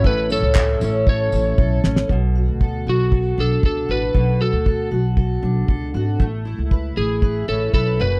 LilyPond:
<<
  \new Staff \with { instrumentName = "Electric slide guitar" } { \time 4/4 \key b \dorian \tempo 4 = 117 b'8 a'4. cis''4. r8 | r4. fis'4 a'8 a'8 b'8~ | b'8 a'4 r2 r8 | r4. gis'4 a'8 a'8 b'8 | }
  \new Staff \with { instrumentName = "Felt piano" } { \time 4/4 \key b \dorian <e' a' cis''>1 | r1 | r1 | r1 | }
  \new Staff \with { instrumentName = "Steel-string acoustic guitar" } { \time 4/4 \key b \dorian a,8 cis'8 e'8 cis'8 a'8 e'8 a'8 cis'8 | b,8 fis'8 a'8 fis'8 a'8 d'8 a'8 fis'8 | b,8 fis'8 a'8 fis'8 a'8 d'8 a'8 fis'8 | a8 e'8 b'8 e'8 b'8 cis'8 b'8 fis,8 | }
  \new Staff \with { instrumentName = "Upright bass" } { \clef bass \time 4/4 \key b \dorian a,,8. cis,8. a,,4 a,,8 b,,8 a,,8 | b,,8. d,8. b,,4 b,,8 cis,8 a,,8 | b,,8. d,8. b,,4 b,,8 cis,8 gis,,8 | a,,8. cis,8. a,,4 a,,8 b,,8 fis,,8 | }
  \new DrumStaff \with { instrumentName = "Drums" } \drummode { \time 4/4 bd8 tamb8 <hc bd>8 tamb8 bd8 tamb8 bd8 sn16 sn16 | bd4 bd4 bd4 bd4 | bd4 bd4 bd4 bd4 | bd4 bd4 bd4 bd4 | }
>>